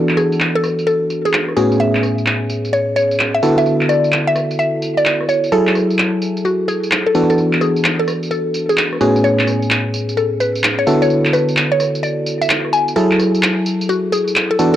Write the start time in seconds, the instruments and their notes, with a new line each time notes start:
Already playing: fm electric piano E3 B3 D4 F#4 A4
0.09 clap
0.17 synth pluck G#4, cross-stick, tambourine
0.32 tambourine
0.40 clap, tambourine
0.55 synth pluck A4
0.64 cross-stick, tambourine
0.79 tambourine
0.87 synth pluck A4, tambourine
1.10 tambourine
1.25 synth pluck G#4, tambourine
1.33 clap, tambourine
1.48 cross-stick
1.57 fm electric piano A2 B3 C#4 G#4, synth pluck F#4, tambourine
1.72 tambourine
1.80 synth pluck E5, tambourine
1.95 clap
2.03 cross-stick, tambourine
2.18 tambourine
2.26 clap, tambourine
2.50 tambourine
2.65 tambourine
2.73 synth pluck C#5, tambourine
2.96 synth pluck C#5, tambourine
3.11 tambourine
3.19 clap, tambourine
3.35 synth pluck E5
3.43 fm electric piano D3 B3 E4 F#4 A4, tambourine
3.58 synth pluck E5, tambourine
3.66 tambourine
3.81 clap
3.89 synth pluck D5, cross-stick, tambourine
4.04 tambourine
4.12 clap, tambourine
4.27 synth pluck E5
4.36 cross-stick, tambourine
4.51 tambourine
4.59 synth pluck E5, tambourine
4.82 tambourine
4.97 synth pluck D5, tambourine
5.05 clap, tambourine
5.21 cross-stick
5.29 synth pluck C#5, tambourine
5.44 tambourine
5.52 fm electric piano F#3 E4 G#4 A4, synth pluck A4, tambourine
5.67 clap
5.75 cross-stick, tambourine
5.90 tambourine
5.99 clap, tambourine
6.22 tambourine
6.37 tambourine
6.45 synth pluck F#4, tambourine
6.68 synth pluck G#4, tambourine
6.83 tambourine
6.91 clap, tambourine
7.07 synth pluck A4
7.15 fm electric piano E3 B3 D4 F#4 A4, tambourine
7.30 synth pluck A4, tambourine
7.38 tambourine
7.53 clap
7.61 synth pluck G#4, cross-stick, tambourine
7.76 tambourine
7.84 clap, tambourine
8.00 synth pluck A4
8.08 cross-stick, tambourine
8.23 tambourine
8.31 synth pluck A4, tambourine
8.54 tambourine
8.69 synth pluck G#4, tambourine
8.77 clap, tambourine
8.93 cross-stick
9.01 fm electric piano A2 B3 C#4 G#4, synth pluck F#4, tambourine
9.16 tambourine
9.24 synth pluck C#5, tambourine
9.39 clap
9.47 cross-stick, tambourine
9.62 tambourine
9.71 clap, tambourine
9.94 tambourine
10.09 tambourine
10.17 synth pluck A4, tambourine
10.40 synth pluck B4, tambourine
10.55 tambourine
10.64 clap, tambourine
10.79 synth pluck C#5
10.87 fm electric piano D3 B3 E4 F#4 A4, tambourine
11.02 synth pluck C#5, tambourine
11.10 tambourine
11.25 clap
11.33 synth pluck B4, cross-stick, tambourine
11.49 tambourine
11.57 clap, tambourine
11.72 synth pluck C#5
11.80 cross-stick, tambourine
11.95 tambourine
12.03 synth pluck D5, tambourine
12.26 tambourine
12.42 synth pluck E5, tambourine
12.50 clap, tambourine
12.65 cross-stick
12.73 synth pluck G#5, tambourine
12.88 tambourine
12.96 fm electric piano F#3 E4 G#4 A4, synth pluck A4, tambourine
13.11 clap
13.19 cross-stick, tambourine
13.35 tambourine
13.43 clap, tambourine
13.66 tambourine
13.81 tambourine
13.89 synth pluck F#4, tambourine
14.12 synth pluck G#4, tambourine
14.28 tambourine
14.36 clap, tambourine
14.51 synth pluck A4
14.59 fm electric piano E3 B3 D4 F#4 A4, tambourine